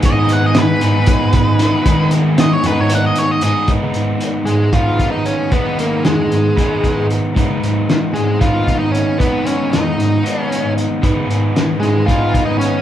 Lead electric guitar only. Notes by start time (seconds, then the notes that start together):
0.05 D#5
0.33 F#5
0.46 D#5
0.58 B4
2.40 D#5
2.53 C#5
2.67 B4
2.81 C#5
2.95 F#5
3.06 D#5
3.18 C#5
3.31 D#5
3.44 D#5
4.45 G#3
4.73 F4
5.11 D#4
5.26 C#4
5.52 B3
5.80 A#3
6.05 G#3
8.14 G#3
8.41 F4
8.79 D#4
8.92 C#4
9.19 B3
9.45 C#4
9.71 D#4
10.41 C#4
11.80 G#3
12.06 F4
12.45 D#4
12.58 C#4